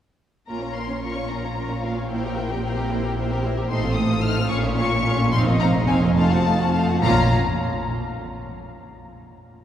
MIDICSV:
0, 0, Header, 1, 6, 480
1, 0, Start_track
1, 0, Key_signature, -5, "minor"
1, 0, Tempo, 536673
1, 437, Time_signature, 6, 3, 24, 8
1, 4272, Tempo, 561272
1, 8435, End_track
2, 0, Start_track
2, 0, Title_t, "Violin section"
2, 0, Program_c, 0, 48
2, 430, Note_on_c, 0, 82, 56
2, 659, Note_off_c, 0, 82, 0
2, 666, Note_on_c, 0, 84, 58
2, 914, Note_off_c, 0, 84, 0
2, 919, Note_on_c, 0, 85, 67
2, 1152, Note_on_c, 0, 82, 59
2, 1156, Note_off_c, 0, 85, 0
2, 1638, Note_off_c, 0, 82, 0
2, 1642, Note_on_c, 0, 77, 55
2, 1877, Note_off_c, 0, 77, 0
2, 1882, Note_on_c, 0, 79, 68
2, 3046, Note_off_c, 0, 79, 0
2, 3302, Note_on_c, 0, 84, 88
2, 3528, Note_off_c, 0, 84, 0
2, 3530, Note_on_c, 0, 87, 88
2, 3779, Note_off_c, 0, 87, 0
2, 3780, Note_on_c, 0, 89, 99
2, 4014, Note_on_c, 0, 85, 96
2, 4025, Note_off_c, 0, 89, 0
2, 4086, Note_off_c, 0, 85, 0
2, 4267, Note_on_c, 0, 85, 97
2, 4731, Note_off_c, 0, 85, 0
2, 4737, Note_on_c, 0, 84, 103
2, 4805, Note_off_c, 0, 84, 0
2, 4974, Note_on_c, 0, 82, 94
2, 5043, Note_off_c, 0, 82, 0
2, 5213, Note_on_c, 0, 80, 91
2, 5281, Note_off_c, 0, 80, 0
2, 5456, Note_on_c, 0, 81, 89
2, 6181, Note_off_c, 0, 81, 0
2, 6198, Note_on_c, 0, 82, 101
2, 6464, Note_off_c, 0, 82, 0
2, 8435, End_track
3, 0, Start_track
3, 0, Title_t, "Violin section"
3, 0, Program_c, 1, 48
3, 435, Note_on_c, 1, 61, 39
3, 436, Note_on_c, 1, 70, 39
3, 549, Note_off_c, 1, 61, 0
3, 550, Note_off_c, 1, 70, 0
3, 567, Note_on_c, 1, 65, 36
3, 569, Note_on_c, 1, 73, 35
3, 684, Note_off_c, 1, 65, 0
3, 685, Note_off_c, 1, 73, 0
3, 692, Note_on_c, 1, 70, 37
3, 696, Note_on_c, 1, 61, 34
3, 807, Note_off_c, 1, 70, 0
3, 807, Note_on_c, 1, 73, 33
3, 809, Note_off_c, 1, 61, 0
3, 812, Note_on_c, 1, 65, 38
3, 924, Note_off_c, 1, 73, 0
3, 924, Note_on_c, 1, 61, 37
3, 924, Note_on_c, 1, 70, 37
3, 927, Note_off_c, 1, 65, 0
3, 1034, Note_off_c, 1, 61, 0
3, 1034, Note_off_c, 1, 70, 0
3, 1039, Note_on_c, 1, 65, 36
3, 1044, Note_on_c, 1, 73, 37
3, 1160, Note_off_c, 1, 65, 0
3, 1163, Note_off_c, 1, 73, 0
3, 1163, Note_on_c, 1, 61, 39
3, 1166, Note_on_c, 1, 70, 39
3, 1281, Note_on_c, 1, 73, 36
3, 1282, Note_off_c, 1, 61, 0
3, 1284, Note_off_c, 1, 70, 0
3, 1285, Note_on_c, 1, 65, 36
3, 1402, Note_off_c, 1, 73, 0
3, 1403, Note_off_c, 1, 65, 0
3, 1407, Note_on_c, 1, 61, 37
3, 1408, Note_on_c, 1, 70, 36
3, 1516, Note_off_c, 1, 61, 0
3, 1517, Note_off_c, 1, 70, 0
3, 1527, Note_on_c, 1, 65, 38
3, 1533, Note_on_c, 1, 73, 40
3, 1645, Note_off_c, 1, 65, 0
3, 1648, Note_off_c, 1, 73, 0
3, 1654, Note_on_c, 1, 61, 39
3, 1656, Note_on_c, 1, 70, 38
3, 1768, Note_off_c, 1, 61, 0
3, 1768, Note_on_c, 1, 65, 34
3, 1768, Note_on_c, 1, 73, 35
3, 1769, Note_off_c, 1, 70, 0
3, 1885, Note_off_c, 1, 65, 0
3, 1885, Note_off_c, 1, 73, 0
3, 1887, Note_on_c, 1, 72, 42
3, 1888, Note_on_c, 1, 70, 45
3, 1996, Note_off_c, 1, 70, 0
3, 1996, Note_off_c, 1, 72, 0
3, 2010, Note_on_c, 1, 67, 40
3, 2011, Note_on_c, 1, 70, 42
3, 2118, Note_off_c, 1, 70, 0
3, 2124, Note_off_c, 1, 67, 0
3, 2129, Note_on_c, 1, 70, 39
3, 2130, Note_on_c, 1, 72, 43
3, 2234, Note_off_c, 1, 70, 0
3, 2244, Note_off_c, 1, 72, 0
3, 2245, Note_on_c, 1, 70, 43
3, 2246, Note_on_c, 1, 67, 39
3, 2348, Note_off_c, 1, 70, 0
3, 2359, Note_on_c, 1, 70, 44
3, 2361, Note_off_c, 1, 67, 0
3, 2361, Note_on_c, 1, 72, 43
3, 2469, Note_off_c, 1, 70, 0
3, 2470, Note_off_c, 1, 72, 0
3, 2484, Note_on_c, 1, 70, 45
3, 2487, Note_on_c, 1, 67, 43
3, 2595, Note_off_c, 1, 70, 0
3, 2601, Note_off_c, 1, 67, 0
3, 2606, Note_on_c, 1, 70, 45
3, 2606, Note_on_c, 1, 72, 50
3, 2717, Note_off_c, 1, 70, 0
3, 2720, Note_off_c, 1, 72, 0
3, 2728, Note_on_c, 1, 70, 41
3, 2729, Note_on_c, 1, 67, 45
3, 2830, Note_off_c, 1, 70, 0
3, 2840, Note_off_c, 1, 67, 0
3, 2840, Note_on_c, 1, 70, 45
3, 2840, Note_on_c, 1, 72, 44
3, 2947, Note_off_c, 1, 70, 0
3, 2947, Note_off_c, 1, 72, 0
3, 2965, Note_on_c, 1, 70, 52
3, 2972, Note_on_c, 1, 67, 52
3, 3073, Note_off_c, 1, 70, 0
3, 3080, Note_off_c, 1, 67, 0
3, 3083, Note_on_c, 1, 70, 48
3, 3084, Note_on_c, 1, 72, 49
3, 3196, Note_off_c, 1, 70, 0
3, 3196, Note_off_c, 1, 72, 0
3, 3202, Note_on_c, 1, 67, 47
3, 3206, Note_on_c, 1, 70, 45
3, 3315, Note_off_c, 1, 67, 0
3, 3317, Note_off_c, 1, 70, 0
3, 3327, Note_on_c, 1, 69, 52
3, 3327, Note_on_c, 1, 72, 55
3, 3426, Note_off_c, 1, 69, 0
3, 3430, Note_off_c, 1, 72, 0
3, 3437, Note_on_c, 1, 69, 55
3, 3440, Note_on_c, 1, 65, 52
3, 3545, Note_off_c, 1, 69, 0
3, 3554, Note_off_c, 1, 65, 0
3, 3555, Note_on_c, 1, 69, 55
3, 3560, Note_on_c, 1, 72, 53
3, 3671, Note_off_c, 1, 69, 0
3, 3674, Note_off_c, 1, 72, 0
3, 3685, Note_on_c, 1, 65, 52
3, 3685, Note_on_c, 1, 69, 55
3, 3790, Note_off_c, 1, 69, 0
3, 3796, Note_off_c, 1, 65, 0
3, 3800, Note_on_c, 1, 69, 55
3, 3806, Note_on_c, 1, 72, 54
3, 3906, Note_off_c, 1, 69, 0
3, 3909, Note_off_c, 1, 72, 0
3, 3926, Note_on_c, 1, 65, 59
3, 3929, Note_on_c, 1, 69, 57
3, 4038, Note_off_c, 1, 65, 0
3, 4039, Note_off_c, 1, 69, 0
3, 4041, Note_on_c, 1, 77, 65
3, 4043, Note_on_c, 1, 61, 61
3, 4148, Note_off_c, 1, 77, 0
3, 4149, Note_off_c, 1, 61, 0
3, 4152, Note_on_c, 1, 65, 55
3, 4155, Note_on_c, 1, 73, 57
3, 4273, Note_off_c, 1, 65, 0
3, 4274, Note_off_c, 1, 73, 0
3, 4274, Note_on_c, 1, 77, 57
3, 4275, Note_on_c, 1, 61, 60
3, 4385, Note_on_c, 1, 73, 60
3, 4388, Note_on_c, 1, 65, 57
3, 4390, Note_off_c, 1, 77, 0
3, 4391, Note_off_c, 1, 61, 0
3, 4504, Note_off_c, 1, 73, 0
3, 4506, Note_off_c, 1, 65, 0
3, 4507, Note_on_c, 1, 77, 62
3, 4509, Note_on_c, 1, 61, 59
3, 4616, Note_off_c, 1, 77, 0
3, 4617, Note_off_c, 1, 61, 0
3, 4629, Note_on_c, 1, 65, 53
3, 4630, Note_on_c, 1, 73, 55
3, 4743, Note_on_c, 1, 77, 63
3, 4745, Note_off_c, 1, 65, 0
3, 4745, Note_off_c, 1, 73, 0
3, 4746, Note_on_c, 1, 63, 65
3, 4853, Note_off_c, 1, 77, 0
3, 4854, Note_off_c, 1, 63, 0
3, 4861, Note_on_c, 1, 75, 60
3, 4864, Note_on_c, 1, 65, 66
3, 4980, Note_off_c, 1, 75, 0
3, 4980, Note_on_c, 1, 77, 57
3, 4981, Note_off_c, 1, 65, 0
3, 4982, Note_on_c, 1, 63, 61
3, 5099, Note_off_c, 1, 77, 0
3, 5100, Note_off_c, 1, 63, 0
3, 5106, Note_on_c, 1, 75, 61
3, 5108, Note_on_c, 1, 65, 63
3, 5221, Note_off_c, 1, 75, 0
3, 5222, Note_off_c, 1, 65, 0
3, 5223, Note_on_c, 1, 77, 65
3, 5229, Note_on_c, 1, 63, 65
3, 5332, Note_off_c, 1, 77, 0
3, 5335, Note_off_c, 1, 63, 0
3, 5344, Note_on_c, 1, 75, 63
3, 5346, Note_on_c, 1, 65, 65
3, 5461, Note_off_c, 1, 75, 0
3, 5462, Note_off_c, 1, 65, 0
3, 5469, Note_on_c, 1, 77, 61
3, 5472, Note_on_c, 1, 65, 68
3, 5577, Note_off_c, 1, 77, 0
3, 5578, Note_off_c, 1, 65, 0
3, 5587, Note_on_c, 1, 66, 57
3, 5587, Note_on_c, 1, 78, 56
3, 5700, Note_on_c, 1, 77, 55
3, 5706, Note_off_c, 1, 66, 0
3, 5706, Note_off_c, 1, 78, 0
3, 5706, Note_on_c, 1, 65, 60
3, 5825, Note_off_c, 1, 77, 0
3, 5826, Note_on_c, 1, 66, 57
3, 5827, Note_on_c, 1, 78, 53
3, 5828, Note_off_c, 1, 65, 0
3, 5947, Note_on_c, 1, 65, 51
3, 5947, Note_on_c, 1, 77, 54
3, 5951, Note_off_c, 1, 66, 0
3, 5951, Note_off_c, 1, 78, 0
3, 6065, Note_off_c, 1, 65, 0
3, 6065, Note_off_c, 1, 77, 0
3, 6077, Note_on_c, 1, 78, 48
3, 6080, Note_on_c, 1, 66, 52
3, 6192, Note_on_c, 1, 65, 78
3, 6195, Note_on_c, 1, 77, 77
3, 6198, Note_off_c, 1, 78, 0
3, 6199, Note_off_c, 1, 66, 0
3, 6461, Note_off_c, 1, 65, 0
3, 6462, Note_off_c, 1, 77, 0
3, 8435, End_track
4, 0, Start_track
4, 0, Title_t, "Viola section"
4, 0, Program_c, 2, 48
4, 437, Note_on_c, 2, 58, 41
4, 437, Note_on_c, 2, 65, 41
4, 550, Note_off_c, 2, 58, 0
4, 550, Note_off_c, 2, 65, 0
4, 551, Note_on_c, 2, 61, 34
4, 556, Note_off_c, 2, 61, 0
4, 556, Note_on_c, 2, 61, 32
4, 672, Note_on_c, 2, 58, 36
4, 673, Note_on_c, 2, 65, 33
4, 679, Note_off_c, 2, 61, 0
4, 792, Note_on_c, 2, 61, 34
4, 797, Note_off_c, 2, 58, 0
4, 797, Note_off_c, 2, 65, 0
4, 915, Note_on_c, 2, 58, 38
4, 917, Note_off_c, 2, 61, 0
4, 918, Note_on_c, 2, 65, 38
4, 1030, Note_off_c, 2, 58, 0
4, 1031, Note_off_c, 2, 65, 0
4, 1033, Note_on_c, 2, 61, 35
4, 1036, Note_off_c, 2, 61, 0
4, 1036, Note_on_c, 2, 61, 38
4, 1153, Note_on_c, 2, 58, 38
4, 1153, Note_on_c, 2, 65, 36
4, 1158, Note_off_c, 2, 61, 0
4, 1271, Note_on_c, 2, 61, 37
4, 1277, Note_off_c, 2, 58, 0
4, 1277, Note_off_c, 2, 65, 0
4, 1392, Note_on_c, 2, 65, 34
4, 1395, Note_on_c, 2, 58, 34
4, 1397, Note_off_c, 2, 61, 0
4, 1509, Note_off_c, 2, 65, 0
4, 1510, Note_off_c, 2, 58, 0
4, 1514, Note_on_c, 2, 61, 36
4, 1629, Note_on_c, 2, 58, 38
4, 1631, Note_on_c, 2, 65, 35
4, 1638, Note_off_c, 2, 61, 0
4, 1754, Note_on_c, 2, 61, 37
4, 1755, Note_off_c, 2, 61, 0
4, 1755, Note_on_c, 2, 61, 39
4, 1756, Note_off_c, 2, 58, 0
4, 1757, Note_off_c, 2, 65, 0
4, 1872, Note_on_c, 2, 58, 45
4, 1874, Note_on_c, 2, 64, 45
4, 1879, Note_off_c, 2, 61, 0
4, 1988, Note_off_c, 2, 58, 0
4, 1989, Note_off_c, 2, 64, 0
4, 1999, Note_on_c, 2, 67, 40
4, 2000, Note_on_c, 2, 60, 39
4, 2119, Note_off_c, 2, 67, 0
4, 2120, Note_off_c, 2, 60, 0
4, 2124, Note_on_c, 2, 58, 39
4, 2125, Note_on_c, 2, 64, 42
4, 2239, Note_on_c, 2, 60, 42
4, 2241, Note_off_c, 2, 58, 0
4, 2241, Note_off_c, 2, 64, 0
4, 2241, Note_on_c, 2, 67, 43
4, 2354, Note_on_c, 2, 58, 46
4, 2356, Note_on_c, 2, 64, 47
4, 2358, Note_off_c, 2, 60, 0
4, 2359, Note_off_c, 2, 67, 0
4, 2467, Note_off_c, 2, 58, 0
4, 2467, Note_off_c, 2, 64, 0
4, 2473, Note_on_c, 2, 67, 43
4, 2478, Note_on_c, 2, 60, 46
4, 2593, Note_on_c, 2, 64, 49
4, 2594, Note_off_c, 2, 67, 0
4, 2596, Note_off_c, 2, 60, 0
4, 2596, Note_on_c, 2, 58, 51
4, 2713, Note_off_c, 2, 64, 0
4, 2715, Note_off_c, 2, 58, 0
4, 2716, Note_on_c, 2, 60, 46
4, 2719, Note_on_c, 2, 67, 44
4, 2834, Note_off_c, 2, 60, 0
4, 2834, Note_on_c, 2, 58, 44
4, 2835, Note_off_c, 2, 67, 0
4, 2836, Note_on_c, 2, 64, 42
4, 2944, Note_off_c, 2, 58, 0
4, 2945, Note_off_c, 2, 64, 0
4, 2958, Note_on_c, 2, 67, 47
4, 2959, Note_on_c, 2, 60, 46
4, 3074, Note_off_c, 2, 60, 0
4, 3074, Note_off_c, 2, 67, 0
4, 3074, Note_on_c, 2, 64, 49
4, 3077, Note_on_c, 2, 58, 50
4, 3187, Note_on_c, 2, 67, 53
4, 3189, Note_on_c, 2, 60, 55
4, 3191, Note_off_c, 2, 64, 0
4, 3192, Note_off_c, 2, 58, 0
4, 3305, Note_on_c, 2, 63, 60
4, 3306, Note_on_c, 2, 57, 60
4, 3307, Note_off_c, 2, 67, 0
4, 3309, Note_off_c, 2, 60, 0
4, 3418, Note_off_c, 2, 57, 0
4, 3418, Note_off_c, 2, 63, 0
4, 3426, Note_on_c, 2, 60, 54
4, 3426, Note_on_c, 2, 65, 51
4, 3547, Note_off_c, 2, 60, 0
4, 3547, Note_off_c, 2, 65, 0
4, 3550, Note_on_c, 2, 57, 52
4, 3552, Note_on_c, 2, 63, 52
4, 3668, Note_off_c, 2, 57, 0
4, 3669, Note_off_c, 2, 63, 0
4, 3670, Note_on_c, 2, 65, 56
4, 3671, Note_on_c, 2, 60, 53
4, 3783, Note_on_c, 2, 57, 61
4, 3784, Note_on_c, 2, 63, 60
4, 3789, Note_off_c, 2, 60, 0
4, 3789, Note_off_c, 2, 65, 0
4, 3897, Note_off_c, 2, 57, 0
4, 3897, Note_off_c, 2, 63, 0
4, 3905, Note_on_c, 2, 60, 59
4, 3906, Note_on_c, 2, 65, 58
4, 4015, Note_off_c, 2, 65, 0
4, 4026, Note_on_c, 2, 65, 62
4, 4027, Note_off_c, 2, 60, 0
4, 4027, Note_on_c, 2, 61, 59
4, 4136, Note_off_c, 2, 61, 0
4, 4140, Note_off_c, 2, 65, 0
4, 4147, Note_on_c, 2, 58, 53
4, 4147, Note_on_c, 2, 61, 59
4, 4268, Note_off_c, 2, 61, 0
4, 4270, Note_off_c, 2, 58, 0
4, 4278, Note_on_c, 2, 61, 56
4, 4278, Note_on_c, 2, 65, 62
4, 4380, Note_off_c, 2, 61, 0
4, 4389, Note_on_c, 2, 58, 57
4, 4391, Note_on_c, 2, 61, 59
4, 4392, Note_off_c, 2, 65, 0
4, 4498, Note_off_c, 2, 61, 0
4, 4506, Note_off_c, 2, 58, 0
4, 4508, Note_on_c, 2, 61, 63
4, 4508, Note_on_c, 2, 65, 55
4, 4612, Note_off_c, 2, 61, 0
4, 4617, Note_off_c, 2, 65, 0
4, 4621, Note_on_c, 2, 58, 65
4, 4623, Note_on_c, 2, 61, 60
4, 4739, Note_on_c, 2, 63, 74
4, 4741, Note_off_c, 2, 58, 0
4, 4742, Note_off_c, 2, 61, 0
4, 4744, Note_on_c, 2, 60, 74
4, 4851, Note_off_c, 2, 63, 0
4, 4853, Note_off_c, 2, 60, 0
4, 4863, Note_on_c, 2, 60, 64
4, 4866, Note_on_c, 2, 58, 66
4, 4972, Note_off_c, 2, 60, 0
4, 4982, Note_off_c, 2, 58, 0
4, 4982, Note_on_c, 2, 60, 62
4, 4983, Note_on_c, 2, 63, 61
4, 5085, Note_off_c, 2, 60, 0
4, 5095, Note_on_c, 2, 60, 58
4, 5097, Note_on_c, 2, 58, 61
4, 5100, Note_off_c, 2, 63, 0
4, 5203, Note_off_c, 2, 60, 0
4, 5214, Note_on_c, 2, 60, 66
4, 5215, Note_on_c, 2, 63, 68
4, 5217, Note_off_c, 2, 58, 0
4, 5327, Note_off_c, 2, 60, 0
4, 5328, Note_off_c, 2, 63, 0
4, 5338, Note_on_c, 2, 58, 60
4, 5339, Note_on_c, 2, 60, 60
4, 5459, Note_off_c, 2, 58, 0
4, 5459, Note_off_c, 2, 60, 0
4, 5459, Note_on_c, 2, 63, 61
4, 5464, Note_on_c, 2, 57, 62
4, 5572, Note_off_c, 2, 63, 0
4, 5574, Note_off_c, 2, 57, 0
4, 5584, Note_on_c, 2, 65, 57
4, 5586, Note_on_c, 2, 60, 56
4, 5704, Note_off_c, 2, 65, 0
4, 5705, Note_off_c, 2, 60, 0
4, 5712, Note_on_c, 2, 57, 52
4, 5714, Note_on_c, 2, 63, 56
4, 5831, Note_off_c, 2, 57, 0
4, 5832, Note_off_c, 2, 63, 0
4, 5833, Note_on_c, 2, 60, 55
4, 5835, Note_on_c, 2, 65, 59
4, 5955, Note_off_c, 2, 60, 0
4, 5955, Note_off_c, 2, 65, 0
4, 5960, Note_on_c, 2, 63, 56
4, 5961, Note_on_c, 2, 57, 52
4, 6071, Note_off_c, 2, 63, 0
4, 6072, Note_off_c, 2, 57, 0
4, 6081, Note_on_c, 2, 60, 54
4, 6082, Note_on_c, 2, 65, 51
4, 6192, Note_off_c, 2, 65, 0
4, 6200, Note_off_c, 2, 60, 0
4, 6202, Note_on_c, 2, 61, 79
4, 6202, Note_on_c, 2, 65, 75
4, 6466, Note_off_c, 2, 61, 0
4, 6466, Note_off_c, 2, 65, 0
4, 8435, End_track
5, 0, Start_track
5, 0, Title_t, "Cello section"
5, 0, Program_c, 3, 48
5, 436, Note_on_c, 3, 46, 45
5, 3272, Note_off_c, 3, 46, 0
5, 3301, Note_on_c, 3, 45, 64
5, 4010, Note_off_c, 3, 45, 0
5, 4024, Note_on_c, 3, 46, 77
5, 4726, Note_off_c, 3, 46, 0
5, 4742, Note_on_c, 3, 41, 82
5, 6016, Note_off_c, 3, 41, 0
5, 6194, Note_on_c, 3, 46, 87
5, 6462, Note_off_c, 3, 46, 0
5, 8435, End_track
6, 0, Start_track
6, 0, Title_t, "Double bass section"
6, 0, Program_c, 4, 48
6, 437, Note_on_c, 4, 34, 48
6, 3273, Note_off_c, 4, 34, 0
6, 3309, Note_on_c, 4, 33, 68
6, 4014, Note_off_c, 4, 33, 0
6, 4031, Note_on_c, 4, 34, 71
6, 4730, Note_off_c, 4, 34, 0
6, 4743, Note_on_c, 4, 29, 85
6, 6016, Note_off_c, 4, 29, 0
6, 6202, Note_on_c, 4, 34, 90
6, 6466, Note_off_c, 4, 34, 0
6, 8435, End_track
0, 0, End_of_file